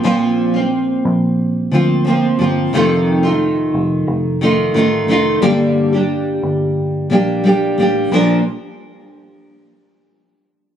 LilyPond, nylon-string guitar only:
\new Staff \with { instrumentName = "Nylon-string guitar" } { \time 4/4 \key g \minor \tempo 4 = 89 <bes, f bes c' f'>8. <bes c' f'>4.~ <bes c' f'>16 <f bes c' f'>8 <f bes c' f'>8 <f bes c' f'>8 | <f, c ees a ees' f'>8. <ees a ees' f'>4.~ <ees a ees' f'>16 <ees a ees' f'>8 <ees a ees' f'>8 <ees a ees' f'>8 | <g, d g bes d' g'>8. <g bes d' g'>4.~ <g bes d' g'>16 <g bes d' g'>8 <g bes d' g'>8 <g bes d' g'>8 | <bes, f bes d' bes'>8 r2. r8 | }